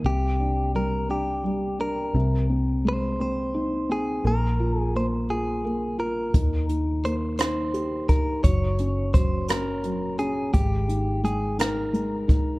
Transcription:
0.04 2.11 C2 medium
0.04 2.11 C3 medium
0.04 0.71 G4 medium
0.40 1.08 D4 soft
0.75 1.42 G3 soft
0.75 1.10 A#4 medium
1.09 1.78 D4 soft
1.09 1.80 G4 medium
1.44 2.12 G3 soft
1.79 2.13 D4 soft
1.79 2.46 A#4 medium
2.14 4.20 C2 medium
2.14 4.21 C3 medium
2.50 3.18 C4 soft
2.85 4.21 G#3 soft
2.85 3.19 C5 medium
3.20 3.88 C4 soft
3.20 3.91 C5 medium
3.54 4.22 D#4 soft
3.89 4.23 C4 soft
3.89 4.27 G#4 medium
4.25 6.31 A#1 medium
4.25 4.94 A#3 medium
4.25 4.80 A#4 medium
4.60 5.29 F4 soft
4.80 4.96 G#4 medium
4.95 5.63 A#3 soft
4.95 5.06 C5 medium
5.30 5.97 F4 soft
5.30 5.99 G#4 medium
5.64 6.32 A#3 soft
5.98 6.33 F4 soft
5.98 6.66 A#4 medium
6.34 8.40 D#2 medium
6.34 8.40 D#3 medium
6.34 kick medium
6.34 closed hi-hat medium
6.69 7.38 D#4 soft
6.69 closed hi-hat soft
7.04 8.40 A#3 soft
7.04 7.14 C5 medium
7.04 closed hi-hat soft
7.39 8.07 D#4 soft
7.39 8.09 C5 medium
7.39 cross-stick loud
7.39 closed hi-hat medium
7.74 8.42 G4 soft
7.74 closed hi-hat soft
8.09 8.43 D#4 soft
8.09 8.42 A#4 medium
8.09 kick medium
8.09 closed hi-hat soft
8.44 10.51 F#1 medium
8.44 9.12 F#3 medium
8.44 9.14 C#5 medium
8.44 kick medium
8.44 closed hi-hat medium
8.79 9.48 C#4 soft
8.79 closed hi-hat soft
9.14 9.82 F#3 soft
9.14 9.49 C5 medium
9.14 kick medium
9.14 closed hi-hat soft
9.48 10.17 C#4 soft
9.48 10.15 A#4 medium
9.48 cross-stick medium
9.48 closed hi-hat medium
9.84 10.52 F#3 soft
9.84 closed hi-hat soft
10.19 10.53 C#4 soft
10.19 10.53 G#4 medium
10.19 closed hi-hat soft
10.53 12.59 G#1 medium
10.53 11.22 G#3 medium
10.53 11.20 G4 medium
10.53 kick medium
10.53 closed hi-hat medium
10.88 11.57 D#4 soft
10.88 closed hi-hat soft
11.24 11.92 G#3 soft
11.24 11.60 G#4 medium
11.24 closed hi-hat soft
11.59 12.26 D#4 soft
11.59 12.59 A#4 medium
11.59 cross-stick medium
11.59 closed hi-hat medium
11.93 12.59 G#3 soft
11.93 closed hi-hat soft
12.28 12.59 D#4 soft
12.28 kick medium
12.28 closed hi-hat soft

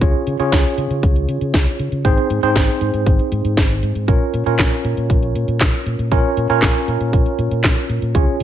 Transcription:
0.01 0.12 C#2 medium
0.01 0.36 C#4 medium
0.01 0.36 F4 medium
0.01 0.36 G#4 medium
0.01 0.36 C#5 medium
0.01 kick loud
0.01 closed hi-hat medium
0.27 0.38 C#3 medium
0.27 closed hi-hat medium
0.40 0.51 C#3 medium
0.40 2.02 C#4 medium
0.40 2.02 F4 medium
0.40 2.02 G#4 medium
0.40 2.02 C#5 medium
0.40 closed hi-hat soft
0.52 0.63 C#2 medium
0.52 kick loud
0.52 snare loud
0.52 closed hi-hat medium
0.78 0.89 C#3 loud
0.78 closed hi-hat medium
0.90 1.01 C#3 medium
0.90 closed hi-hat soft
1.03 1.25 C#2 medium
1.03 kick loud
1.03 closed hi-hat medium
1.16 closed hi-hat soft
1.29 1.40 C#3 medium
1.29 closed hi-hat medium
1.41 1.52 C#3 medium
1.41 closed hi-hat soft
1.54 1.65 C#2 medium
1.54 kick loud
1.54 snare loud
1.54 closed hi-hat medium
1.67 closed hi-hat soft
1.79 1.90 C#3 medium
1.79 closed hi-hat medium
1.92 2.03 C#3 medium
1.92 closed hi-hat soft
2.05 2.16 G#1 loud
2.05 2.40 C4 medium
2.05 2.40 D#4 medium
2.05 2.40 G#4 medium
2.05 2.40 C5 loud
2.05 kick loud
2.05 closed hi-hat medium
2.17 closed hi-hat soft
2.30 2.41 G#2 medium
2.30 closed hi-hat medium
2.43 2.54 G#2 medium
2.43 4.05 C4 medium
2.43 4.05 D#4 medium
2.43 4.05 G#4 medium
2.43 4.05 C5 loud
2.43 closed hi-hat medium
2.56 2.67 G#1 loud
2.56 kick loud
2.56 snare loud
2.56 closed hi-hat medium
2.81 2.92 G#2 loud
2.81 closed hi-hat medium
2.94 3.05 G#2 medium
2.94 closed hi-hat soft
3.06 3.17 G#1 medium
3.06 kick loud
3.06 closed hi-hat medium
3.19 closed hi-hat soft
3.32 3.43 G#2 medium
3.32 closed hi-hat medium
3.45 3.56 G#2 loud
3.45 closed hi-hat medium
3.57 3.79 G#1 medium
3.57 kick loud
3.57 snare loud
3.57 closed hi-hat medium
3.70 closed hi-hat soft
3.83 3.94 G#2 loud
3.83 closed hi-hat medium
3.95 4.06 G#2 medium
3.95 closed hi-hat soft
4.08 4.19 A#1 medium
4.08 4.43 C#4 medium
4.08 4.43 F4 medium
4.08 4.43 A#4 medium
4.08 4.43 C#5 medium
4.08 kick loud
4.08 closed hi-hat medium
4.34 4.45 A#2 medium
4.34 closed hi-hat medium
4.46 4.57 A#2 medium
4.46 6.08 C#4 medium
4.46 6.08 F4 medium
4.46 6.08 A#4 medium
4.46 6.08 C#5 medium
4.46 closed hi-hat medium
4.59 4.70 A#1 loud
4.59 kick loud
4.59 snare loud
4.59 clap medium
4.59 closed hi-hat medium
4.85 4.95 A#2 medium
4.85 closed hi-hat medium
4.97 5.08 A#2 medium
4.97 closed hi-hat soft
5.10 5.32 A#1 medium
5.10 kick loud
5.10 closed hi-hat medium
5.23 closed hi-hat soft
5.35 5.46 A#2 medium
5.35 closed hi-hat medium
5.48 5.59 A#2 medium
5.48 closed hi-hat soft
5.61 5.72 A#1 medium
5.61 kick loud
5.61 snare loud
5.61 clap medium
5.61 closed hi-hat medium
5.74 closed hi-hat soft
5.86 5.97 A#2 medium
5.86 closed hi-hat medium
5.99 6.10 A#2 medium
5.99 closed hi-hat soft
6.11 6.22 A#1 medium
6.11 6.47 C#4 medium
6.11 6.47 F4 medium
6.11 6.47 A#4 medium
6.11 6.47 C#5 loud
6.11 kick loud
6.11 closed hi-hat medium
6.37 6.48 A#2 medium
6.37 closed hi-hat medium
6.50 6.61 A#2 medium
6.50 8.12 C#4 loud
6.50 8.12 F4 medium
6.50 8.12 A#4 medium
6.50 8.12 C#5 loud
6.50 closed hi-hat medium
6.62 6.73 A#1 loud
6.62 kick loud
6.62 snare loud
6.62 clap medium
6.62 closed hi-hat medium
6.88 6.99 A#2 medium
6.88 closed hi-hat medium
7.00 7.11 A#2 medium
7.00 closed hi-hat medium
7.13 7.24 A#1 medium
7.13 kick loud
7.13 closed hi-hat medium
7.26 closed hi-hat soft
7.39 7.50 A#2 medium
7.39 closed hi-hat medium
7.51 7.62 A#2 loud
7.51 closed hi-hat medium
7.64 7.75 A#1 medium
7.64 kick loud
7.64 snare loud
7.64 clap medium
7.64 closed hi-hat medium
7.77 closed hi-hat soft
7.89 8.00 A#2 medium
7.89 closed hi-hat medium
8.02 8.13 A#2 medium
8.02 closed hi-hat soft
8.15 8.26 C#2 loud
8.15 8.43 C#4 medium
8.15 8.43 F4 medium
8.15 8.43 G#4 medium
8.15 8.43 C#5 medium
8.15 kick loud
8.15 closed hi-hat medium

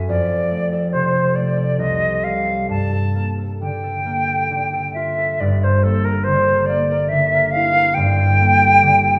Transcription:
0.00 0.13 F#2 soft
0.00 0.13 C#4 soft
0.00 0.29 A4 soft
0.09 1.82 F2 medium
0.09 0.94 D5 medium
0.30 0.72 A4 soft
0.51 1.35 A3 soft
0.73 1.14 A4 soft
0.93 1.83 C3 soft
0.93 1.37 C5 medium
1.15 1.55 A4 soft
1.36 5.26 A3 soft
1.36 1.81 D5 medium
1.56 1.99 A4 soft
1.79 2.73 C2 soft
1.79 2.25 D#5 medium
2.00 2.44 A4 soft
2.24 6.14 G3 soft
2.24 2.69 F5 medium
2.45 2.92 A4 soft
2.69 5.40 G2 soft
2.69 3.31 A5 medium
2.93 3.37 A4 soft
3.15 4.04 A#3 soft
3.39 3.82 A4 soft
3.61 4.50 D3 soft
3.61 4.91 G5 medium
3.83 4.27 A4 soft
4.05 5.83 A#3 soft
4.28 4.72 A4 soft
4.51 5.44 D3 soft
4.73 5.17 A4 soft
4.94 5.44 F4 soft
4.94 5.42 E5 medium
5.18 5.44 A4 soft
5.40 7.95 G1 medium
5.40 7.97 G2 medium
5.40 5.65 D5 medium
5.63 6.05 A#4 soft
5.63 5.85 C5 medium
5.83 6.68 A#3 soft
5.83 6.06 A4 medium
6.05 6.25 A#4 medium
6.05 6.47 A#4 soft
6.24 7.11 D3 soft
6.24 6.67 C5 medium
6.48 6.90 A#4 soft
6.66 8.39 A#3 soft
6.66 7.10 D5 medium
6.91 7.33 A#4 medium
7.08 8.01 D3 soft
7.08 7.53 E5 medium
7.34 7.75 A#4 soft
7.51 7.96 F5 medium
7.56 8.01 E4 soft
7.77 9.19 A#4 soft
7.94 9.19 G1 medium
7.94 9.19 G2 medium
7.94 9.19 G5 loud
8.19 8.61 A4 soft
8.40 9.19 A#3 soft
8.62 9.03 A4 soft
8.83 9.19 D3 medium
9.04 9.19 A4 medium

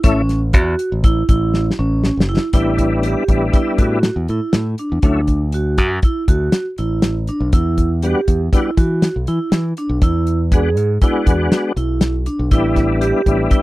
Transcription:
0.03 0.54 A1 medium
0.03 0.21 E3 medium
0.03 0.22 A3 medium
0.03 0.39 C#4 medium
0.03 0.22 C#4 medium
0.03 0.22 E4 medium
0.03 kick loud
0.03 closed hi-hat medium
0.29 snare soft
0.29 closed hi-hat soft
0.53 0.74 E2 medium
0.53 0.89 F#4 medium
0.53 kick loud
0.53 closed hi-hat medium
0.79 closed hi-hat medium
0.92 1.22 A1 medium
1.04 1.22 E4 medium
1.04 kick medium
1.04 closed hi-hat medium
1.29 1.69 A1 medium
1.29 1.64 E4 medium
1.29 kick medium
1.29 closed hi-hat medium
1.54 snare medium
1.71 snare medium
1.79 2.09 A1 medium
1.79 2.14 C#4 medium
2.04 snare medium
2.17 2.37 F#1 medium
2.17 snare medium
2.29 2.46 E4 medium
2.37 snare medium
2.53 3.14 A1 medium
2.53 3.24 G3 medium
2.53 3.24 B3 medium
2.53 3.24 D4 medium
2.53 2.89 E4 medium
2.53 3.24 E4 medium
2.53 kick loud
2.53 closed hi-hat medium
2.78 kick medium
2.78 closed hi-hat medium
3.03 3.39 G4 medium
3.03 closed hi-hat medium
3.28 3.49 A1 medium
3.28 3.99 G3 medium
3.28 3.99 B3 medium
3.28 3.99 D4 medium
3.28 3.99 E4 medium
3.28 kick medium
3.28 closed hi-hat medium
3.53 3.71 E4 medium
3.53 kick medium
3.53 closed hi-hat medium
3.78 4.09 A2 medium
3.78 4.14 F#4 medium
3.78 kick medium
3.78 closed hi-hat medium
4.03 snare loud
4.03 closed hi-hat medium
4.16 4.26 E2 medium
4.28 4.39 A2 medium
4.28 4.64 E4 medium
4.28 closed hi-hat medium
4.53 4.74 A2 medium
4.53 snare loud
4.53 closed hi-hat medium
4.78 4.96 D4 medium
4.78 closed hi-hat medium
4.92 5.02 E2 medium
5.02 5.78 D2 medium
5.02 5.21 F#3 medium
5.02 5.21 A3 medium
5.02 5.21 C#4 medium
5.02 5.39 D4 medium
5.02 5.21 E4 medium
5.02 kick medium
5.02 closed hi-hat medium
5.27 kick medium
5.27 closed hi-hat soft
5.52 5.89 F#4 medium
5.52 closed hi-hat medium
5.78 5.98 F#2 medium
5.78 kick medium
5.78 snare soft
5.78 closed hi-hat medium
6.02 6.22 E4 medium
6.02 kick medium
6.02 closed hi-hat medium
6.28 6.48 D2 medium
6.28 6.64 F#4 medium
6.28 kick medium
6.28 closed hi-hat medium
6.52 snare loud
6.52 closed hi-hat medium
6.78 7.29 A1 medium
6.78 7.13 E4 medium
6.78 closed hi-hat medium
7.02 snare loud
7.02 closed hi-hat medium
7.27 7.46 D4 medium
7.27 closed hi-hat medium
7.40 7.51 B1 medium
7.53 8.13 E2 medium
7.53 7.88 E4 medium
7.53 kick loud
7.53 closed hi-hat medium
7.78 kick medium
7.78 closed hi-hat soft
8.02 8.21 G3 medium
8.02 8.21 B3 medium
8.02 8.21 D4 medium
8.02 8.21 F#4 medium
8.02 8.38 G4 medium
8.02 closed hi-hat medium
8.28 8.48 E2 medium
8.28 kick medium
8.28 closed hi-hat medium
8.53 8.70 G3 medium
8.53 8.71 B3 medium
8.53 8.71 D4 medium
8.53 8.71 E4 medium
8.53 8.71 F#4 medium
8.53 kick medium
8.53 closed hi-hat medium
8.77 9.08 E3 medium
8.77 9.13 F#4 medium
8.77 kick medium
8.77 closed hi-hat medium
9.02 snare medium
9.02 closed hi-hat medium
9.16 9.26 B1 medium
9.27 9.38 E3 medium
9.27 9.63 E4 medium
9.27 closed hi-hat soft
9.52 9.72 E3 medium
9.52 snare loud
9.52 closed hi-hat medium
9.77 9.95 D4 medium
9.77 closed hi-hat medium
9.89 10.00 B1 medium
10.02 10.77 E2 medium
10.02 10.38 E4 medium
10.02 kick medium
10.02 closed hi-hat medium
10.27 closed hi-hat soft
10.52 10.69 G#3 medium
10.52 10.70 B3 medium
10.52 10.70 D4 medium
10.52 10.70 F#4 medium
10.52 10.87 G#4 medium
10.52 kick medium
10.52 closed hi-hat medium
10.77 10.97 G#2 medium
10.77 closed hi-hat medium
11.01 11.72 G#3 medium
11.01 11.72 B3 medium
11.01 11.73 D4 medium
11.01 11.19 E4 medium
11.01 11.73 F#4 medium
11.01 kick medium
11.01 closed hi-hat medium
11.26 11.47 E2 medium
11.26 11.61 F#4 medium
11.26 kick medium
11.26 closed hi-hat medium
11.52 snare loud
11.52 closed hi-hat medium
11.76 12.27 B1 medium
11.76 12.12 E4 medium
11.76 closed hi-hat medium
12.01 snare loud
12.01 closed hi-hat medium
12.26 12.44 D4 medium
12.26 closed hi-hat medium
12.39 12.49 B1 medium
12.51 13.12 A1 medium
12.51 13.22 G3 medium
12.51 13.22 B3 medium
12.51 13.22 D4 medium
12.51 12.86 E4 medium
12.51 13.22 E4 medium
12.51 kick loud
12.51 closed hi-hat medium
12.76 kick medium
12.76 snare soft
12.76 closed hi-hat soft
13.01 13.36 G4 medium
13.01 closed hi-hat medium
13.26 13.46 A1 medium
13.26 13.62 G3 medium
13.26 13.62 B3 medium
13.26 13.62 D4 medium
13.26 13.62 E4 medium
13.26 kick medium
13.26 closed hi-hat medium
13.51 13.62 E4 medium
13.51 kick medium
13.51 closed hi-hat medium

